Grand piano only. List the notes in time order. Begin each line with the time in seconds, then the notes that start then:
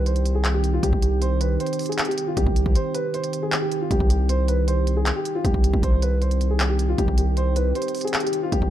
0.06 C5
0.35 G#4
0.54 G4
0.73 F4
0.83 G4
1.03 G4
1.22 C5
1.41 B4
1.60 C5
1.89 G#4
2.08 G4
2.27 F4
2.37 G4
2.76 C5
2.95 B4
3.14 C5
3.43 G#4
3.62 G4
3.81 F4
3.91 G4
4.10 G4
4.29 C5
4.49 B4
4.68 C5
4.97 G#4
5.16 G4
5.35 F4
5.44 G4
5.83 C5
6.02 B4
6.22 C5
6.50 G#4
6.70 G4
6.89 F4
6.98 G4
7.18 G4
7.37 C5
7.56 B4
7.75 C5
8.04 G#4
8.24 G4
8.43 F4
8.52 G4